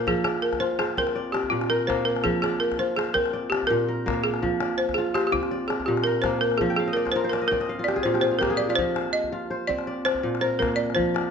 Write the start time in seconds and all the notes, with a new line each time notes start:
Already playing: A#2 A#3 A#4 D5 F5
0.07 F3 G#4, calabash thump
0.24 G#4 D5, calabash click
0.42 A#4
0.53 calabash thump, calabash click
0.60 F4 C5, calabash click
0.79 G#4 C5, calabash click
0.97 C4 A#4, calabash thump
1.07 calabash click
1.15 D5
1.32 G4 D5, calabash click
1.43 calabash thump, calabash click
1.50 A#2 F4, calabash click
1.61 calabash click
1.70 A#4
1.87 A#3 C5, calabash thump, calabash click
2.05 A#4, calabash click
2.16 calabash click
2.24 F3 G#4, calabash thump
2.42 G#4 D5, calabash click
2.60 A#4
2.72 calabash thump, calabash click
2.79 F4 C5, calabash click
2.96 G#4 C5, calabash click
3.14 C4 A#4, calabash thump
3.26 calabash click
3.33 D5
3.50 G4 D5, calabash click
3.63 calabash thump, calabash click
3.67 A#2 A#4
3.72 calabash click
3.88 A#4
4.06 A#3, calabash thump, calabash click
4.24 G#4, calabash click
4.34 calabash click
4.42 F3, calabash thump
4.61 D5, calabash click
4.78 C5
4.89 calabash thump, calabash click
4.94 F4 G#4, calabash click
5.14 G4 C5, calabash click
5.27 G4
5.32 C4 F4, calabash thump
5.43 calabash click
5.51 D5
5.68 G#4 D5, calabash click
5.80 calabash thump, calabash click
5.86 A#2 G4, calabash click
5.97 calabash click
6.04 A#4
6.22 A#3 C5, calabash thump, calabash click
6.41 A#4, calabash click
6.52 calabash click
6.58 F3 G#4, calabash thump
6.70 G5
6.76 G#4 F5
6.88 D#5
6.93 A#4 D5
7.05 C5, calabash thump, calabash click
7.12 C5
7.16 F4 A#4
7.24 C5, calabash click
7.29 A#4, calabash click
7.33 D5
7.42 D#5
7.48 C4 A#4 D5
7.53 calabash thump, calabash click
7.60 D#5, calabash click
7.69 F5
7.79 F4
7.84 G4 D5
7.89 calabash click
7.96 G#4, calabash thump
8.03 A#2 F4 C5
8.14 G4, calabash click
8.21 G#4 C5
8.31 F4, calabash click
8.39 A#3 G4 A#4
8.43 calabash thump, calabash click
8.50 G#4
8.57 G4 D5
8.69 F4 D5, calabash click
8.76 F3 C5, calabash thump
8.96 C5, calabash click
9.13 D#5
9.24 calabash thump
9.32 F4, calabash click
9.51 C5
9.67 C4 D5, calabash thump
9.79 calabash click
9.87 D5
10.05 C5 D5, calabash click
10.15 calabash thump
10.23 A#2, calabash click
10.35 calabash click
10.41 A#4 C5
10.59 A#3 A#4, calabash thump, calabash click
10.76 D5
10.81 calabash click
10.90 calabash click
10.95 F3 C5
10.99 calabash thump
11.14 D5, calabash click